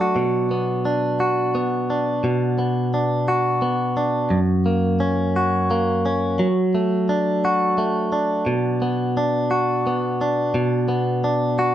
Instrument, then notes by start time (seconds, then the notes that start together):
clean electric guitar
Already playing: F#3 A3 D4
0.01 F#4
0.16 B2
0.51 B3
0.85 D4
1.20 F#4
1.55 B3
1.90 D4
2.24 B2
2.59 B3
2.94 D4
3.28 F#4
3.62 B3
3.97 D4
4.30 F#2
4.66 A#3
5.00 C#4
5.36 F#4
5.71 A#3
6.06 C#4
6.39 F#3
6.75 A3
7.09 D4
7.45 F#4
7.78 A3
8.12 D4
8.46 B2
8.82 B3
9.17 D4
9.51 F#4
9.87 B3
10.21 D4
10.54 B2
10.88 B3
11.24 D4
11.59 F#4